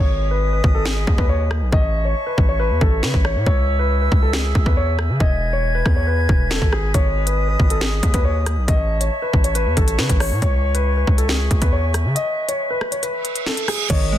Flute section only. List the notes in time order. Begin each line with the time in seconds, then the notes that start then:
0.00 B4 D#5 G#5 D#6
1.72 C#5 E5 A5 C#6
3.46 G#5 E6
5.20 B4 G#6
6.94 D#5 D#6
8.68 C#5 E5 A5 C#6
10.42 E5 G#5
12.16 B4
13.90 B4 D#5 G#5 D#6